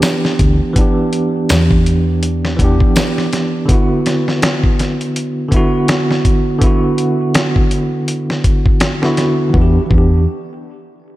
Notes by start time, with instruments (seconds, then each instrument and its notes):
Already playing: tine electric piano E3 B3 D4 G4
0.02 snare, closed hi-hat, tambourine
0.25 snare
0.39 fingered electric bass D2, kick, closed hi-hat
0.73 tine electric piano E3 B3, kick, closed hi-hat
0.79 tine electric piano D4 G4
1.13 closed hi-hat
1.49 fingered electric bass E2, snare, closed hi-hat, tambourine
1.71 kick
1.86 closed hi-hat
2.23 closed hi-hat
2.45 snare
2.56 fingered electric bass E1, tine electric piano E3 B3, kick, closed hi-hat
2.61 tine electric piano D4 G4
2.80 kick
2.96 snare, closed hi-hat, tambourine
3.18 snare
3.33 snare, closed hi-hat
3.66 tine electric piano D3 B3, kick, closed hi-hat
3.71 tine electric piano E4 F#4
4.06 snare, closed hi-hat
4.28 snare
4.42 snare, closed hi-hat
4.64 kick
4.79 snare, closed hi-hat
5.01 closed hi-hat
5.16 closed hi-hat
5.49 tine electric piano D3 B3, kick, closed hi-hat
5.54 tine electric piano E4 F#4
5.88 snare, closed hi-hat
6.11 snare
6.25 kick, closed hi-hat
6.59 tine electric piano D3 B3, kick, closed hi-hat
6.64 tine electric piano E4 F#4
6.98 closed hi-hat
7.34 snare, closed hi-hat
7.56 kick
7.71 closed hi-hat
8.08 closed hi-hat
8.30 snare
8.44 kick, closed hi-hat
8.66 kick
8.80 snare, closed hi-hat
9.02 tine electric piano D3 B3 E4 F#4, snare
9.17 snare, closed hi-hat
9.50 tine electric piano E3
9.54 fingered electric bass E2, tine electric piano B3 D4, kick
9.62 tine electric piano G4
9.86 tine electric piano E3 B3
9.91 fingered electric bass E2, tine electric piano D4, kick
9.98 tine electric piano G4